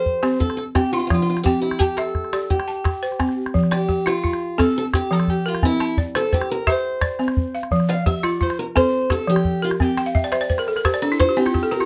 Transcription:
Already playing: balafon A4 D5, steel-string acoustic guitar C5
0.06 calabash thump
0.23 balafon C4 G4, calabash click
0.40 steel-string acoustic guitar A4, calabash thump
0.50 calabash click
0.57 steel-string acoustic guitar A4, calabash click
0.75 balafon C4, steel-string acoustic guitar G4, calabash thump, calabash click
0.93 steel-string acoustic guitar F4, balafon F4
0.99 steel-string acoustic guitar F4
1.07 balafon F3, steel-string acoustic guitar F4, calabash thump, calabash click
1.14 steel-string acoustic guitar F4
1.22 steel-string acoustic guitar F4
1.30 steel-string acoustic guitar F4
1.37 calabash click
1.44 balafon C4 G5, steel-string acoustic guitar G4, calabash thump, calabash click
1.62 steel-string acoustic guitar E4, calabash click
1.71 calabash click
1.79 steel-string acoustic guitar G4, balafon A5, calabash thump
1.97 steel-string acoustic guitar A4, balafon E5, calabash click
2.15 calabash thump, calabash click
2.24 calabash click
2.33 balafon G4 D5, calabash click
2.50 steel-string acoustic guitar G4, calabash thump, calabash click
2.60 calabash click
2.68 balafon A5
2.84 balafon G4, calabash thump, calabash click
3.03 balafon C5
3.12 calabash click
3.19 balafon C4, calabash thump, calabash click
3.29 calabash click
3.46 calabash click
3.54 balafon F3, calabash thump
3.63 calabash click
3.71 steel-string acoustic guitar G4, balafon D5, calabash click
3.89 balafon G4, calabash thump
4.06 balafon F4, steel-string acoustic guitar F4, calabash click
4.24 balafon F4, calabash thump
4.33 calabash click
4.58 balafon C4 A4, steel-string acoustic guitar A4, calabash thump, calabash click
4.78 steel-string acoustic guitar A4
4.93 balafon G4, steel-string acoustic guitar G4, calabash thump, calabash click
5.11 balafon F3, steel-string acoustic guitar A4, calabash click
5.20 calabash click
5.28 steel-string acoustic guitar G4, calabash thump
5.46 steel-string acoustic guitar F4, balafon A#4
5.55 calabash click
5.63 balafon C4, steel-string acoustic guitar E4, calabash thump
5.72 calabash click
5.80 balafon A5, calabash click
5.97 balafon D5, calabash thump
6.15 steel-string acoustic guitar A4, balafon C5, calabash click
6.33 steel-string acoustic guitar G4, balafon C5, calabash thump
6.42 calabash click
6.51 steel-string acoustic guitar A#4
6.67 balafon G4 E5, steel-string acoustic guitar C5, calabash thump, calabash click
7.01 balafon D5, calabash thump, calabash click
7.19 balafon C4, calabash click
7.28 calabash click
7.37 calabash thump
7.55 balafon F5
7.63 calabash click
7.71 balafon F3, calabash thump
7.80 calabash click
7.89 balafon D5, steel-string acoustic guitar F5
8.06 balafon G4, steel-string acoustic guitar E5, calabash thump
8.23 balafon F4, steel-string acoustic guitar D5, calabash click
8.41 balafon F4, steel-string acoustic guitar C5, calabash thump
8.50 calabash click
8.59 steel-string acoustic guitar A#4
8.76 balafon C4 A4, steel-string acoustic guitar C5, calabash thump, calabash click
9.10 balafon G4, steel-string acoustic guitar A4, calabash thump, calabash click
9.27 balafon F3, steel-string acoustic guitar G4, calabash click
9.36 calabash click
9.45 calabash thump
9.62 steel-string acoustic guitar F4, balafon A#4
9.71 calabash click
9.80 balafon C4, steel-string acoustic guitar G4, calabash thump
9.97 balafon G5, calabash click
10.06 balafon F5
10.15 balafon E5, calabash thump
10.24 balafon D5, calabash click
10.32 balafon C5 E5, calabash click
10.41 balafon D5, calabash click
10.50 balafon C5, calabash thump
10.58 balafon A#4, calabash click
10.67 balafon A4, calabash click
10.76 balafon A#4, calabash click
10.85 balafon G4 C5, calabash thump, calabash click
10.94 balafon D5, calabash click
11.02 balafon D4, steel-string acoustic guitar A4
11.12 balafon E4
11.20 balafon F4, steel-string acoustic guitar C5, calabash thump, calabash click
11.29 balafon G4
11.37 balafon C4 E4, steel-string acoustic guitar G4
11.46 balafon F4, calabash click
11.54 balafon G4, calabash thump, calabash click
11.63 balafon A4
11.71 balafon G4, steel-string acoustic guitar A#4
11.80 balafon F4, calabash click

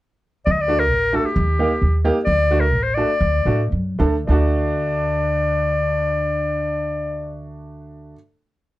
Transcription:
0.46 upright bass D2, clarinet D5
0.51 clarinet D#5
0.61 clarinet D5
0.68 upright piano A3 D4 F#4
0.79 clarinet A#4
0.91 upright bass A1
1.13 upright piano A3 D4 F#4, clarinet A4
1.25 clarinet G4
1.36 upright bass D#2
1.59 upright piano A#3 D#4 G4
1.82 upright bass D#2
2.04 upright piano A#3 D#4 G4
2.24 upright bass D2, clarinet D5
2.51 upright piano A3 D4 F#4
2.61 clarinet A#4
2.73 upright bass A1
2.83 clarinet C5
2.94 upright piano A3 D4 F#4, clarinet D5
3.21 upright bass D2
3.45 upright bass A2, upright piano A3 D4 F#4
3.72 upright bass F#2
3.99 upright bass D2, upright piano A3 D4 A4
4.27 upright bass D2, upright piano A3 D4, clarinet D5
4.32 upright piano F#4

